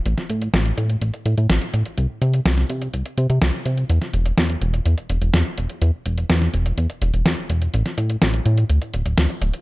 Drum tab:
HH |x-xxxxxxxxxxxxxx|x-xxxxxxxxxxx-xx|x-xxxxxxxxxxx-xx|x-xxxxxxxxxxx-xx|
SD |-o--o-------o---|----oo------o---|-o--o-------o---|----oo------o---|

HH |xxxxxxxxxxxxxxxx|
SD |-o--o-------o---|